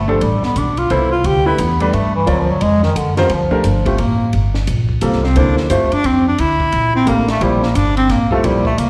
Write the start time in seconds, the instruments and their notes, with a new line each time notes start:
Already playing: upright bass G1, bass clarinet A3
0.08 bass clarinet F3, grand piano A3 D4 G4 A4
0.21 upright bass A1, bass clarinet G3, ride
0.43 bass clarinet B3, muted upright bass stroke, snare
0.56 upright bass B1, bass clarinet D4, hi-hat pedal, ride
0.77 bass clarinet F4, ride
0.90 upright bass C2, grand piano B3 E4 A4 C5, bass clarinet E4, ride
1.12 bass clarinet F4
1.24 upright bass D2, bass clarinet G4, ride
1.46 grand piano A3 D4 G4 B4, bass clarinet E4
1.58 upright bass E2, bass clarinet B3, hi-hat pedal, ride
1.80 bass clarinet G3, grand piano A3 D4 G4 B4, ride
1.93 upright bass G2, bass clarinet A3, ride
2.16 bass clarinet E3
2.26 upright bass D2, bass clarinet F#3, grand piano C4 F4 A#4 D5, ride
2.40 bass clarinet F3
2.51 bass clarinet F#3
2.61 upright bass F2, bass clarinet G#3, ride
2.83 bass clarinet D#3, snare
2.96 upright bass F#2, bass clarinet D3, hi-hat pedal, ride
3.16 bass clarinet D#3, grand piano G3 C4 F4 A#4 C5, snare, ride
3.30 upright bass D2, bass clarinet F3, ride
3.51 grand piano A3 D4 G4 A#4, kick
3.64 upright bass G1, hi-hat pedal, ride
3.86 grand piano G3 C4 F4 G4, bass clarinet A3, kick, ride
3.98 upright bass A1, bass clarinet A#3, ride
4.33 upright bass G1, ride
4.54 snare
4.67 upright bass A#1, hi-hat pedal, ride
4.89 kick
5.01 upright bass C2, grand piano G3 C4 F4 A4, bass clarinet A#3, hi-hat pedal, ride
5.12 snare
5.24 bass clarinet C4, snare
5.36 upright bass D2, grand piano A#3 E4 A4 C5, bass clarinet D4, ride
5.57 bass clarinet F3, snare
5.69 upright bass G2, grand piano G3 C4 F4 C5, bass clarinet A3, hi-hat pedal, ride
5.92 bass clarinet D4, muted upright bass stroke, ride
6.04 upright bass F2, bass clarinet C4, ride
6.28 bass clarinet D4
6.38 upright bass D2, bass clarinet E4, ride
6.60 kick
6.72 upright bass A#1, ride
6.95 bass clarinet C4
7.06 upright bass A1, grand piano A3 D4 G4 A#4, bass clarinet A#3, hi-hat pedal, ride
7.28 bass clarinet A3, snare, ride
7.41 upright bass A#1, grand piano F3 A#3 E4 G4, bass clarinet G3, ride
7.63 bass clarinet A#3, snare
7.75 upright bass G1, bass clarinet D4, hi-hat pedal, ride
7.97 bass clarinet C4, ride
8.09 upright bass A1, bass clarinet A#3, snare, ride
8.31 grand piano G3 C4 F4 A4, bass clarinet A3, kick
8.43 upright bass A#1, grand piano F3 A#3 E4 G4, bass clarinet G3, ride
8.65 bass clarinet A3, kick
8.78 upright bass C2, bass clarinet A#3, hi-hat pedal, ride